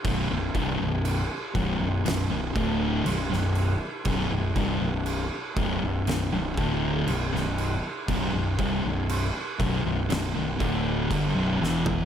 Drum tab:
CC |x-x-x-x-x-x-x-x-|x-x-x-x-x-x-x-x-|x-x-x-x-x-x-x---|
SD |--------o----o--|--------o----o--|--------o-----o-|
FT |----------------|----------------|---------------o|
BD |o-o---o---o-----|o-o---o---o-----|o-o---o---o-o---|